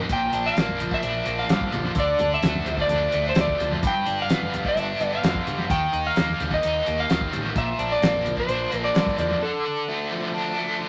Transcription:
Already playing: overdriven electric guitar D#3 G3 A#3 D#4
0.09 picked electric bass A#1, overdriven electric guitar A#2, electric slide guitar G5, kick, closed hi-hat
0.32 picked electric bass A#1, overdriven electric guitar D4, closed hi-hat
0.46 electric slide guitar F5
0.56 picked electric bass A#1, overdriven electric guitar A#3, snare, closed hi-hat
0.69 high conga
0.80 overdriven electric guitar F3, closed hi-hat, low conga
0.91 electric slide guitar E5, kick
1.02 picked electric bass A#1, overdriven electric guitar D4, closed hi-hat
1.26 picked electric bass A#1, overdriven electric guitar A#3, closed hi-hat
1.39 electric slide guitar F5
1.49 picked electric bass G2, overdriven electric guitar D3, electric slide guitar F5, snare, closed hi-hat
1.61 kick
1.72 picked electric bass A#1, overdriven electric guitar F3, closed hi-hat, low conga
1.84 high conga
1.95 picked electric bass D2, overdriven electric guitar D3, kick, closed hi-hat
2.00 electric slide guitar D5
2.19 picked electric bass D2, overdriven electric guitar D4, closed hi-hat, high conga, low conga
2.34 electric slide guitar E5
2.42 picked electric bass D2, overdriven electric guitar A3, snare, closed hi-hat, low conga
2.55 high conga
2.65 picked electric bass D2, overdriven electric guitar F3, closed hi-hat, low conga
2.77 electric slide guitar D5, kick
2.89 picked electric bass D2, overdriven electric guitar D4, closed hi-hat, high conga
3.12 picked electric bass D2, overdriven electric guitar A3, closed hi-hat
3.29 electric slide guitar C5
3.35 picked electric bass D2, overdriven electric guitar D3, snare, closed hi-hat
3.41 electric slide guitar D5
3.48 kick
3.59 picked electric bass D2, overdriven electric guitar F3, snare, closed hi-hat, low conga
3.72 high conga
3.83 picked electric bass G1, overdriven electric guitar G2, kick, closed hi-hat
3.87 electric slide guitar G5
4.06 picked electric bass G1, overdriven electric guitar D4, closed hi-hat
4.22 electric slide guitar F5
4.29 picked electric bass G1, overdriven electric guitar B3, snare, closed hi-hat
4.42 high conga
4.54 overdriven electric guitar G3, closed hi-hat, low conga
4.65 electric slide guitar E5, kick
4.75 picked electric bass G1, overdriven electric guitar D4, closed hi-hat
5.00 picked electric bass G1, overdriven electric guitar B3, closed hi-hat
5.15 electric slide guitar F5
5.23 picked electric bass F2, overdriven electric guitar D3, electric slide guitar F5, snare, closed hi-hat
5.35 kick
5.46 picked electric bass G1, overdriven electric guitar G3, closed hi-hat, low conga
5.58 high conga
5.70 picked electric bass D#2, overdriven electric guitar D#3, electric slide guitar G5, kick, closed hi-hat
5.92 picked electric bass D#2, overdriven electric guitar D#4, closed hi-hat
6.07 electric slide guitar F5
6.16 picked electric bass D#2, overdriven electric guitar A#3, snare, closed hi-hat
6.29 high conga
6.40 picked electric bass D#2, overdriven electric guitar G3, closed hi-hat, low conga
6.51 electric slide guitar D#5, kick
6.63 picked electric bass D#2, overdriven electric guitar D#4, closed hi-hat
6.86 picked electric bass D#2, overdriven electric guitar A#3, closed hi-hat
7.00 electric slide guitar F5
7.10 picked electric bass D#2, overdriven electric guitar D#3, electric slide guitar F5, snare, closed hi-hat
7.21 kick
7.33 picked electric bass A1, overdriven electric guitar G3, closed hi-hat, low conga
7.56 picked electric bass A#1, overdriven electric guitar A#2, electric slide guitar E5, kick, closed hi-hat
7.79 picked electric bass A#1, overdriven electric guitar D4, closed hi-hat
7.92 electric slide guitar D5
8.01 picked electric bass A#1, overdriven electric guitar A#3, snare, closed hi-hat
8.15 high conga
8.25 overdriven electric guitar F3, closed hi-hat, low conga
8.37 electric slide guitar C5, kick
8.47 picked electric bass A#1, overdriven electric guitar D4, closed hi-hat
8.71 picked electric bass A#1, overdriven electric guitar A#3, closed hi-hat
8.84 electric slide guitar D5
8.95 picked electric bass G2, overdriven electric guitar D3, snare, closed hi-hat
9.07 kick, snare
9.18 picked electric bass E2, overdriven electric guitar F3, electric slide guitar D5, closed hi-hat, low conga
9.31 high conga
9.41 overdriven electric guitar D3, electric slide guitar A4
9.65 overdriven electric guitar D4
9.88 overdriven electric guitar A3
10.11 overdriven electric guitar F3
10.34 overdriven electric guitar D4
10.58 overdriven electric guitar A3
10.81 overdriven electric guitar D3

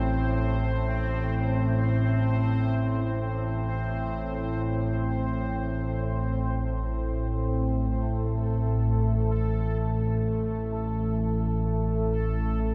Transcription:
Already playing: synth drone A1 A2, synth texture C4 C5
7.92 synth drone A1 A2, synth texture A3 A4

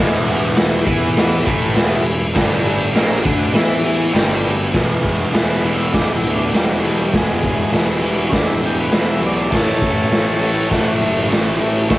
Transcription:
Already playing: distorted electric guitar E2 E3, transistor combo organ B4 E5 G#5
0.00 picked electric bass E1
0.25 transistor combo organ B4 E5 G#5, ride
0.57 transistor combo organ B4 E5 G#5, snare, ride
0.86 picked electric bass E2, distorted electric guitar E3 E4, transistor combo organ B4 E5 G#5, kick, ride
1.17 transistor combo organ B4 E5 F#5, snare, ride
1.45 picked electric bass A1, distorted electric guitar A2 A3, transistor combo organ B4 E5, kick, ride
1.49 transistor combo organ G#5
1.74 picked electric bass E1, distorted electric guitar E2 E3, transistor combo organ B4 E5 G#5, snare, ride
2.03 picked electric bass E1, distorted electric guitar E2, transistor combo organ B4 E5 G#5, ride
2.33 picked electric bass G1, distorted electric guitar G2 G3, transistor combo organ B4 E5 G#5, kick, snare, ride
2.63 transistor combo organ B4 E5 G#5, ride
2.94 picked electric bass A#1, distorted electric guitar A#2 A#3, transistor combo organ B4 E5 G#5, snare, ride
3.23 picked electric bass D2, distorted electric guitar D3 D4, transistor combo organ B4 E5 G#5, kick, ride
3.53 picked electric bass E2, distorted electric guitar E3 E4, transistor combo organ B4 E5 G#5, snare, ride
3.84 transistor combo organ B4 E5 G#5, ride
4.12 picked electric bass G1, distorted electric guitar G2 G3, transistor combo organ B4 E5 G#5, snare, ride
4.44 transistor combo organ B4 E5 G#5, ride
4.72 picked electric bass E1, distorted electric guitar E2 B2 E3, transistor combo organ G#4 B4 E5, kick, snare, crash
5.02 picked electric bass E1, transistor combo organ G#4 B4 C#5, kick, ride
5.32 picked electric bass E1, distorted electric guitar E2 B2 E3, transistor combo organ G#4 B4 E5, snare, ride
5.62 distorted electric guitar E2 B2 E3, transistor combo organ G#4 B4 E5, ride
5.75 transistor combo organ E4
5.92 picked electric bass E1, distorted electric guitar E2 B2 E3, transistor combo organ D4 G#4 B4 E5, kick, snare, ride
6.16 transistor combo organ E4
6.23 picked electric bass D2, transistor combo organ G#4 B4 E5, ride
6.35 transistor combo organ D4
6.52 picked electric bass E1, distorted electric guitar E2 B2 E3, transistor combo organ G#4 B4 E5, snare, ride
6.56 transistor combo organ G3
6.82 picked electric bass E1, distorted electric guitar E2 B2 E3, transistor combo organ G#4 B4 E5, ride
6.95 transistor combo organ G3
7.13 picked electric bass E1, distorted electric guitar E2 B2 E3, transistor combo organ G#3 G#4 B4 E5, kick, snare, ride
7.41 transistor combo organ G#4 B4 E5, kick, ride
7.72 picked electric bass E1, distorted electric guitar E2 B2 E3, transistor combo organ G#4 B4 E5, snare, ride
8.01 picked electric bass E1, distorted electric guitar E2 B2 E3, transistor combo organ G#4 B4 D5, ride
8.30 picked electric bass E1, distorted electric guitar E2 B2 E3, transistor combo organ C#4 G#4 B4 D5, kick, snare, ride
8.34 transistor combo organ D4
8.47 transistor combo organ E4
8.60 transistor combo organ G#4 B4 E5, ride
8.66 transistor combo organ G4
8.80 transistor combo organ B4
8.90 picked electric bass E1, distorted electric guitar E2 B2 E3, transistor combo organ G#4 B4 E5, snare, ride
9.12 transistor combo organ E5
9.19 picked electric bass B1, distorted electric guitar E2 B2, transistor combo organ G#4 B4 C#5
9.23 distorted electric guitar E3, transistor combo organ D5, ride
9.49 picked electric bass A1, distorted electric guitar A2 E3 A3, transistor combo organ A4 C#5 E5, kick
9.53 transistor combo organ A4 C#5, snare, crash
9.81 picked electric bass A1, transistor combo organ A4 C#5 F#5, kick, ride
10.09 picked electric bass A1, distorted electric guitar A2 E3 A3, transistor combo organ A4 C#5 E5, snare, ride
10.39 distorted electric guitar A2 E3 A3, transistor combo organ A4 C#5 F#5, ride
10.68 picked electric bass A1, distorted electric guitar A2 E3 A3, transistor combo organ A4 C#5 F#5, kick
10.72 snare, ride
10.99 picked electric bass F#1, transistor combo organ A4 C#5 E5, ride
11.28 picked electric bass A1, distorted electric guitar A2 E3 A3, transistor combo organ A4 C#5 E5
11.32 snare, ride
11.58 picked electric bass A1, distorted electric guitar A2 E3 A3, transistor combo organ A4 C#5 E5, ride
11.88 picked electric bass A1, distorted electric guitar A2 E3 A3, transistor combo organ A4 C#5 E5, kick, snare, ride

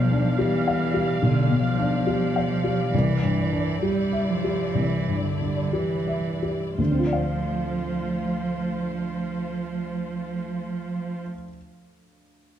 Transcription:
Already playing: upright piano B1 B2, cello F3, string section G3 D5 F5
0.11 upright piano D4
0.38 cello E3, upright piano G4
0.68 upright piano F5
0.94 upright piano G4
1.22 upright piano B1, cello D3
1.50 upright piano B2
1.64 cello F3
1.79 upright piano D4
2.07 upright piano G4
2.36 upright piano F5
2.64 upright piano G4
2.93 upright piano C2, cello E3, string section G3 E4
3.22 upright piano G2
3.51 upright piano D4
3.82 cello G3, upright piano G4
4.12 upright piano E5
4.29 cello F3
4.44 upright piano G4
4.75 upright piano C2, cello E3
5.08 upright piano G2
5.24 cello D3
5.41 upright piano D4
5.73 cello E3, upright piano G4
6.07 upright piano E5
6.42 upright piano G4
6.78 upright piano D2, cello F3, string section A3 F4 C5
6.85 upright piano D3
6.91 upright piano C4
6.99 upright piano F4
7.06 upright piano D5
7.13 upright piano F5

